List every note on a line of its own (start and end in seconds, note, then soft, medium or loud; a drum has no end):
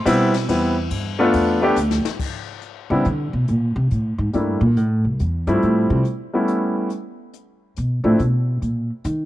0.05 0.48 B2 medium
0.05 0.31 G3 medium
0.05 0.31 B3 medium
0.05 0.32 C4 medium
0.05 0.32 E4 loud
0.05 kick soft
0.05 hi-hat pedal medium
0.05 ride medium
0.34 snare medium
0.34 ride medium
0.49 0.90 E2 medium
0.49 0.74 G3 medium
0.49 0.74 B3 medium
0.49 0.74 C4 medium
0.49 0.75 E4 medium
0.49 kick soft
0.49 ride medium
0.91 1.33 G2 medium
0.91 kick soft
0.91 ride medium
1.19 1.59 A3 medium
1.19 1.60 B3 medium
1.19 1.60 D4 medium
1.19 1.60 F4 medium
1.33 1.76 E2 loud
1.33 kick soft
1.33 ride medium
1.62 1.75 A3 medium
1.62 1.76 B3 medium
1.62 1.76 D4 medium
1.62 1.76 G4 medium
1.76 2.03 D2 loud
1.76 hi-hat pedal medium
1.91 snare medium
2.05 snare medium
2.19 kick medium
2.19 crash medium
2.61 closed hi-hat soft
2.90 3.05 C#3 medium
2.90 3.04 G3 medium
2.90 3.04 B3 soft
2.90 3.04 C4 soft
2.90 3.05 D4 soft
2.90 3.05 E4 medium
3.05 3.33 D3 medium
3.05 closed hi-hat soft
3.33 3.48 B2 medium
3.48 3.75 A#2 medium
3.48 closed hi-hat soft
3.76 3.90 C3 medium
3.91 4.18 A2 medium
3.91 closed hi-hat medium
4.18 4.33 G#2 medium
4.33 4.60 G2 medium
4.33 4.59 G3 soft
4.33 4.59 A3 soft
4.33 4.59 A#3 soft
4.33 4.60 D4 soft
4.33 4.60 E4 soft
4.33 closed hi-hat soft
4.61 4.77 A#2 loud
4.77 5.04 A2 medium
4.77 closed hi-hat soft
5.05 5.19 C2 medium
5.19 5.47 E2 medium
5.19 closed hi-hat medium
5.47 5.62 G2 medium
5.47 6.02 F3 medium
5.47 6.02 G3 medium
5.47 6.02 A3 medium
5.47 6.03 C4 medium
5.47 6.03 E4 medium
5.47 closed hi-hat soft
5.62 5.90 A2 medium
5.62 closed hi-hat soft
5.90 5.99 C3 loud
6.05 closed hi-hat soft
6.33 6.88 G3 medium
6.33 6.88 A3 medium
6.33 6.88 B3 medium
6.33 6.88 C#4 soft
6.33 6.89 E4 medium
6.48 closed hi-hat soft
6.90 closed hi-hat soft
7.34 closed hi-hat soft
7.76 8.03 B2 medium
7.76 closed hi-hat medium
8.04 8.18 A2 medium
8.04 8.17 F3 medium
8.04 8.17 A3 medium
8.04 8.18 C4 medium
8.04 8.18 D4 medium
8.04 8.18 E4 medium
8.19 8.59 B2 medium
8.19 closed hi-hat soft
8.62 8.89 A#2 medium
8.62 closed hi-hat soft
9.04 9.25 D#3 medium
9.04 closed hi-hat medium